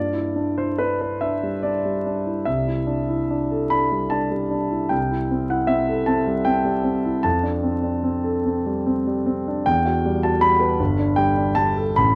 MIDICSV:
0, 0, Header, 1, 2, 480
1, 0, Start_track
1, 0, Key_signature, 1, "major"
1, 0, Tempo, 854701
1, 918, Tempo, 819672
1, 1403, Time_signature, 6, 3, 24, 8
1, 2838, Tempo, 778210
1, 4278, Tempo, 804290
1, 5718, Tempo, 771208
1, 7268, End_track
2, 0, Start_track
2, 0, Title_t, "Grand piano"
2, 0, Program_c, 0, 0
2, 0, Note_on_c, 0, 43, 31
2, 0, Note_on_c, 0, 74, 50
2, 59, Control_c, 0, 64, 127
2, 73, Note_on_c, 0, 64, 25
2, 200, Note_on_c, 0, 62, 26
2, 272, Note_off_c, 0, 64, 0
2, 318, Note_off_c, 0, 74, 0
2, 324, Note_on_c, 0, 72, 47
2, 325, Note_on_c, 0, 64, 22
2, 396, Note_off_c, 0, 62, 0
2, 440, Note_on_c, 0, 71, 52
2, 445, Note_off_c, 0, 72, 0
2, 449, Note_on_c, 0, 62, 26
2, 518, Note_off_c, 0, 64, 0
2, 559, Note_off_c, 0, 71, 0
2, 638, Note_off_c, 0, 62, 0
2, 679, Note_on_c, 0, 76, 51
2, 683, Note_on_c, 0, 62, 27
2, 805, Note_on_c, 0, 55, 25
2, 871, Note_off_c, 0, 62, 0
2, 914, Note_on_c, 0, 74, 51
2, 915, Note_off_c, 0, 76, 0
2, 923, Note_on_c, 0, 62, 26
2, 993, Note_off_c, 0, 55, 0
2, 1045, Note_on_c, 0, 55, 23
2, 1115, Note_off_c, 0, 62, 0
2, 1167, Note_on_c, 0, 62, 26
2, 1236, Note_off_c, 0, 55, 0
2, 1284, Note_on_c, 0, 64, 23
2, 1357, Note_off_c, 0, 62, 0
2, 1377, Note_off_c, 0, 43, 0
2, 1398, Note_on_c, 0, 76, 56
2, 1401, Note_off_c, 0, 74, 0
2, 1404, Note_off_c, 0, 64, 0
2, 1404, Note_on_c, 0, 36, 33
2, 1414, Control_c, 0, 64, 0
2, 1521, Control_c, 0, 64, 127
2, 1524, Note_on_c, 0, 64, 25
2, 1640, Note_on_c, 0, 62, 28
2, 1719, Note_off_c, 0, 64, 0
2, 1769, Note_on_c, 0, 64, 25
2, 1837, Note_off_c, 0, 62, 0
2, 1895, Note_on_c, 0, 62, 28
2, 1961, Note_off_c, 0, 64, 0
2, 2017, Note_on_c, 0, 69, 28
2, 2082, Note_off_c, 0, 62, 0
2, 2124, Note_off_c, 0, 76, 0
2, 2128, Note_on_c, 0, 83, 63
2, 2136, Note_on_c, 0, 62, 26
2, 2202, Note_off_c, 0, 69, 0
2, 2254, Note_on_c, 0, 55, 26
2, 2321, Note_off_c, 0, 62, 0
2, 2361, Note_on_c, 0, 81, 55
2, 2364, Note_off_c, 0, 83, 0
2, 2369, Note_on_c, 0, 62, 30
2, 2439, Note_off_c, 0, 55, 0
2, 2486, Note_on_c, 0, 55, 23
2, 2556, Note_off_c, 0, 62, 0
2, 2598, Note_on_c, 0, 62, 28
2, 2674, Note_off_c, 0, 55, 0
2, 2718, Note_on_c, 0, 64, 28
2, 2789, Note_off_c, 0, 62, 0
2, 2814, Note_off_c, 0, 36, 0
2, 2826, Note_on_c, 0, 79, 56
2, 2833, Note_on_c, 0, 36, 33
2, 2835, Note_off_c, 0, 81, 0
2, 2836, Note_off_c, 0, 64, 0
2, 2848, Control_c, 0, 64, 0
2, 2959, Note_on_c, 0, 64, 28
2, 2960, Control_c, 0, 64, 127
2, 3081, Note_on_c, 0, 60, 27
2, 3153, Note_off_c, 0, 64, 0
2, 3195, Note_off_c, 0, 79, 0
2, 3198, Note_on_c, 0, 64, 27
2, 3200, Note_on_c, 0, 78, 50
2, 3273, Note_off_c, 0, 60, 0
2, 3306, Note_on_c, 0, 76, 61
2, 3311, Note_on_c, 0, 60, 32
2, 3321, Note_off_c, 0, 78, 0
2, 3392, Note_off_c, 0, 64, 0
2, 3439, Note_on_c, 0, 69, 30
2, 3508, Note_off_c, 0, 60, 0
2, 3546, Note_on_c, 0, 81, 59
2, 3553, Note_off_c, 0, 76, 0
2, 3553, Note_on_c, 0, 60, 31
2, 3631, Note_off_c, 0, 69, 0
2, 3676, Note_on_c, 0, 55, 27
2, 3747, Note_off_c, 0, 60, 0
2, 3784, Note_on_c, 0, 79, 65
2, 3791, Note_off_c, 0, 81, 0
2, 3793, Note_on_c, 0, 60, 31
2, 3867, Note_off_c, 0, 55, 0
2, 3908, Note_on_c, 0, 55, 29
2, 3986, Note_off_c, 0, 60, 0
2, 4026, Note_on_c, 0, 60, 29
2, 4104, Note_off_c, 0, 55, 0
2, 4156, Note_on_c, 0, 64, 27
2, 4224, Note_off_c, 0, 60, 0
2, 4250, Note_off_c, 0, 36, 0
2, 4267, Note_on_c, 0, 81, 64
2, 4270, Note_off_c, 0, 79, 0
2, 4273, Note_on_c, 0, 41, 37
2, 4276, Note_off_c, 0, 64, 0
2, 4288, Control_c, 0, 64, 0
2, 4387, Note_on_c, 0, 62, 30
2, 4389, Control_c, 0, 64, 127
2, 4507, Note_on_c, 0, 60, 28
2, 4579, Note_off_c, 0, 62, 0
2, 4626, Note_on_c, 0, 62, 27
2, 4700, Note_off_c, 0, 60, 0
2, 4748, Note_on_c, 0, 60, 33
2, 4823, Note_off_c, 0, 62, 0
2, 4869, Note_on_c, 0, 69, 32
2, 4946, Note_off_c, 0, 60, 0
2, 4992, Note_off_c, 0, 81, 0
2, 5000, Note_on_c, 0, 60, 31
2, 5068, Note_off_c, 0, 69, 0
2, 5123, Note_on_c, 0, 55, 30
2, 5193, Note_off_c, 0, 60, 0
2, 5243, Note_on_c, 0, 60, 34
2, 5314, Note_off_c, 0, 55, 0
2, 5365, Note_on_c, 0, 55, 29
2, 5433, Note_off_c, 0, 60, 0
2, 5479, Note_on_c, 0, 60, 35
2, 5553, Note_off_c, 0, 55, 0
2, 5608, Note_on_c, 0, 62, 30
2, 5669, Note_off_c, 0, 60, 0
2, 5691, Note_off_c, 0, 41, 0
2, 5716, Note_on_c, 0, 79, 74
2, 5722, Note_off_c, 0, 62, 0
2, 5722, Note_on_c, 0, 40, 40
2, 5728, Control_c, 0, 64, 0
2, 5822, Control_c, 0, 64, 127
2, 5839, Note_on_c, 0, 66, 31
2, 5963, Note_on_c, 0, 55, 33
2, 6027, Note_off_c, 0, 66, 0
2, 6073, Note_off_c, 0, 79, 0
2, 6075, Note_on_c, 0, 81, 57
2, 6076, Note_on_c, 0, 66, 30
2, 6146, Note_off_c, 0, 55, 0
2, 6186, Note_on_c, 0, 83, 81
2, 6189, Note_off_c, 0, 81, 0
2, 6189, Note_on_c, 0, 55, 35
2, 6259, Note_off_c, 0, 66, 0
2, 6299, Note_on_c, 0, 71, 34
2, 6375, Note_off_c, 0, 55, 0
2, 6405, Note_off_c, 0, 40, 0
2, 6420, Note_off_c, 0, 71, 0
2, 6423, Note_on_c, 0, 31, 44
2, 6434, Control_c, 0, 64, 0
2, 6521, Control_c, 0, 64, 127
2, 6545, Note_on_c, 0, 62, 31
2, 6652, Note_on_c, 0, 79, 69
2, 6661, Note_on_c, 0, 55, 35
2, 6662, Note_off_c, 0, 83, 0
2, 6738, Note_off_c, 0, 62, 0
2, 6785, Note_on_c, 0, 62, 35
2, 6857, Note_off_c, 0, 55, 0
2, 6894, Note_on_c, 0, 81, 78
2, 6899, Note_on_c, 0, 55, 37
2, 6901, Note_off_c, 0, 79, 0
2, 6980, Note_off_c, 0, 62, 0
2, 7031, Note_on_c, 0, 69, 33
2, 7099, Note_off_c, 0, 55, 0
2, 7131, Note_off_c, 0, 31, 0
2, 7146, Note_off_c, 0, 81, 0
2, 7151, Note_on_c, 0, 83, 72
2, 7154, Note_off_c, 0, 69, 0
2, 7162, Control_c, 0, 64, 0
2, 7162, Note_on_c, 0, 33, 40
2, 7268, Note_off_c, 0, 33, 0
2, 7268, Note_off_c, 0, 83, 0
2, 7268, End_track
0, 0, End_of_file